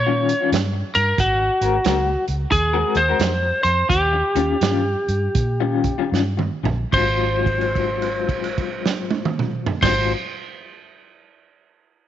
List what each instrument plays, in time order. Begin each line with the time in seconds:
Already playing: fingered electric bass A#2, lead electric guitar C#5
0.07 clean electric guitar D#3 G3 C#4 F4
0.29 closed hi-hat
0.41 clean electric guitar D#3 G3 C#4 F4
0.52 fingered electric bass G2, snare, closed hi-hat
0.73 muted clean electric guitar stroke
0.95 fingered electric bass G2, lead electric guitar A#4, muted clean electric guitar stroke, closed hi-hat
1.18 fingered electric bass G#1, lead electric guitar F#4, kick, closed hi-hat
1.39 muted clean electric guitar stroke
1.61 fingered electric bass G#1, clean electric guitar G#3 C4 F#4 A#4, closed hi-hat
1.84 fingered electric bass C#2, clean electric guitar G#3 C4 F#4 A#4, snare, closed hi-hat
2.06 muted clean electric guitar stroke
2.28 fingered electric bass C#2, closed hi-hat
2.52 fingered electric bass D#2, lead electric guitar G#4, kick, closed hi-hat
2.73 clean electric guitar G#3 C4 F#4 A#4
2.95 fingered electric bass D#2, lead electric guitar C5, closed hi-hat
3.08 clean electric guitar G#3 C4 F#4 A#4
3.19 fingered electric bass F2, snare, closed hi-hat
3.43 muted clean electric guitar stroke
3.63 fingered electric bass F2, lead electric guitar C5, muted clean electric guitar stroke, closed hi-hat
3.89 fingered electric bass D#2, lead electric guitar G4, kick, closed hi-hat
4.13 muted clean electric guitar stroke
4.35 fingered electric bass D#2, clean electric guitar D#3 G3 C#4 F4, closed hi-hat
4.61 fingered electric bass G2, clean electric guitar D#3 G3 C#4 F4, snare, closed hi-hat
4.85 muted clean electric guitar stroke
5.08 fingered electric bass G2, closed hi-hat
5.35 fingered electric bass A#2, kick, closed hi-hat
5.60 clean electric guitar D#3 G3 C#4 F4
5.84 kick, closed hi-hat
5.98 clean electric guitar D#3 G3 C#4 F4
6.12 fingered electric bass G2, snare
6.37 muted clean electric guitar stroke, mid tom
6.63 fingered electric bass A#1, muted clean electric guitar stroke, floor tom
6.92 fingered electric bass G#1, clean electric guitar G#2 F#3 C4, lead electric guitar C5, kick, crash
6.96 clean electric guitar F4
7.46 kick, crash
7.61 crash
7.75 kick, crash
8.02 crash
8.29 kick, crash
8.44 crash
8.58 kick, crash
8.86 snare
9.11 high tom
9.25 mid tom
9.39 mid tom
9.66 floor tom
9.81 fingered electric bass G#1, clean electric guitar G#2 F#3 C4 F4, lead electric guitar C5, kick, snare, crash